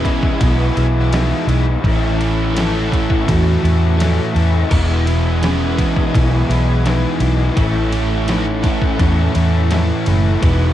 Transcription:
Already playing: E3 G#3 B3 C#4 E4 B4 G#5 D#6 E6
0.05 E2 B2 E3 G#3 B3 E4, kick, ride
0.23 kick
0.40 B1 E2 B2 E3 G#3 B3 E4, kick, ride
0.76 B1 E2 B2 E3 G#3 B3 E4, ride
1.12 E2 B2 E3 G#3 B3 D#4 E4, snare, ride
1.47 B1 E2 B2 E3 G#3 B3 E4, ride
1.84 A1 A2 E3 A3 C#4 E4 A4 F#5 C#6, kick, ride
2.19 A2 E3 A3 C#4 E4, ride
2.54 A2 E3 A3 C#4 E4, ride
2.58 snare
2.90 A2 E3 A3 C#4 E4, kick, ride
3.10 kick
3.25 E2 A2 E3 A3 C#4 E4, kick, ride
3.29 F#4
3.61 E2 A2 E3 A3 C#4 E4, ride
3.97 A2 E3 A3 C#4 E4, ride
4.01 snare
4.33 E2 A2 E3 A3 C#4 E4, ride
4.69 E1 E2 B2 E3 G#3 B3 E4 B4 G#5 D#6, kick, crash
5.05 E2 B2 E3 G#3 B3 E4, ride
5.41 E2 B2 E3 G#3 B3 C#4 E4, snare, ride
5.77 E2 B2 E3 G#3 B3 E4, kick, ride
5.96 kick
6.13 B1 E2 B2 E3 G#3 B3 E4, kick, ride
6.49 B1 E2 B2 E3 G#3 B3 E4, ride
6.85 E2 B2 E3 G#3 B3 D#4 E4, snare, ride
7.20 B1 E2 B2 E3 G#3 B3 E4, ride
7.55 A1 A2 E3 A3 C#4 E4 A4 F#5 C#6, kick, ride
7.59 E4
7.91 A2 E3 A3 C#4 E4, ride
8.27 A2 E3 A3 C#4 D#4 E4, snare, ride
8.63 A2 E3 A3 C#4 E4, kick, ride
8.67 C#4
8.82 kick
8.99 E2 A2 E3 A3 C#4 E4, kick, ride
9.34 E2 A2 E3 C#4 E4, ride
9.38 A3
9.71 A2 E3 A3 C#4 E4, snare, ride
9.75 E4
10.06 F#1 A2 E3 A3 C#4 E4, ride
10.40 E1 E2 B2 E3 G#3 B3 E4 B4 G#5 D#6, kick, ride
10.48 D#4

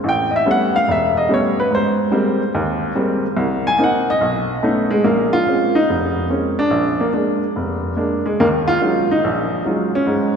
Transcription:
0.04 A1
0.09 G5
0.31 D#5
0.36 E5
0.46 G3 A3 B3 C#4
0.51 F#5
0.76 F5
0.88 E1 E5
1.17 D#5
1.29 G3 A3 B3 C#4
1.34 C#5
1.60 B4
1.71 G#2 C5
2.12 G3 G#3 A#3 C4
2.55 D#2
2.96 G3 G#3 A#3 C4
3.37 C2
3.67 G#5
3.78 A#3 C4 D#4
3.84 F#5
4.10 D#5
4.21 B1
4.63 A3 B3 C#4 D#4
4.91 G#3
5.04 A#1 A#3
5.33 F4
5.47 G#3 A#3 C4 C#4
5.75 D#4
5.89 F1
6.29 G#3 A#3 C4 C#4
6.59 D4
6.70 A#1
7.01 A#3
7.13 G#3 A#3 D4
7.56 F1
7.96 G#3 A#3 D4
8.26 G#3
8.40 D#2 D#3 A#3
8.68 F4
8.82 F#3 G#3 C#4 D#4 F4
9.11 D#4
9.24 A#1
9.65 F#3 G#3 C#4 D#4 F4
9.95 C#4
10.07 G#2 G#3

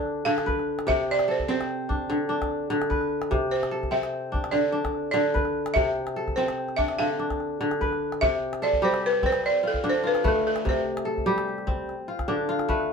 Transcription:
Already playing: D3 C4 D4 A4 D5
0.25 D3 F5
0.38 calabash click
0.46 B4, calabash thump, calabash click
0.59 calabash click
0.79 calabash click
0.87 C3 E5, calabash thump, calabash click
1.10 D5, calabash click
1.19 calabash click
1.28 A4 C5
1.40 calabash thump, calabash click
1.49 C4 C5
1.61 calabash click
1.89 D4, calabash thump
2.10 D3, calabash click
2.29 D4
2.42 calabash thump, calabash click
2.70 D3
2.82 calabash click
2.90 B4, calabash thump, calabash click
3.01 calabash click
3.22 calabash click
3.31 C3, calabash thump, calabash click
3.51 C5, calabash click
3.63 calabash click
3.71 A4
3.83 calabash thump, calabash click
3.91 C4 E5
4.03 calabash click
4.32 D4, calabash thump
4.44 calabash click
4.51 D3 D5, calabash click
4.72 D4
4.85 calabash thump, calabash click
5.11 D3 D5
5.34 B4, calabash thump, calabash click
5.45 calabash click
5.66 calabash click
5.74 C3 E5, calabash thump
6.07 calabash click
6.16 A4
6.28 calabash thump, calabash click
6.36 C4 C5
6.48 calabash click
6.69 calabash click
6.76 D4 E5, calabash thump, calabash click
6.88 calabash click
6.99 D3 F5, calabash click
7.19 D4, calabash click
7.30 calabash thump, calabash click
7.40 calabash click
7.61 D3
7.71 calabash click
7.81 B4, calabash thump
7.92 calabash click
8.12 calabash click
8.21 C3 E5, calabash thump
8.53 calabash click
8.62 A4 D5
8.73 calabash thump
8.82 G3 G4 C5
8.94 calabash click
9.03 B4, calabash click
9.13 calabash click
9.23 C4 C5, calabash thump, calabash click
9.32 calabash click
9.44 D5, calabash click
9.63 F4
9.68 A4
9.74 calabash thump
9.84 D3 D4, calabash click
9.90 C5
10.03 F4 B4
10.15 calabash click
10.24 A3 A4 B4, calabash thump, calabash click
10.36 calabash click
10.47 A4
10.56 calabash click
10.65 C3 C5, calabash thump
10.97 calabash click
11.05 A4
11.18 calabash thump
11.26 G3 G4
11.38 calabash click
11.49 calabash click
11.58 calabash click
11.67 C4, calabash thump, calabash click
11.89 calabash click
12.08 F4
12.19 calabash thump, calabash click
12.28 D3 D4, calabash click
12.49 F4
12.59 calabash click
12.69 A3 B4, calabash thump, calabash click
12.80 calabash click

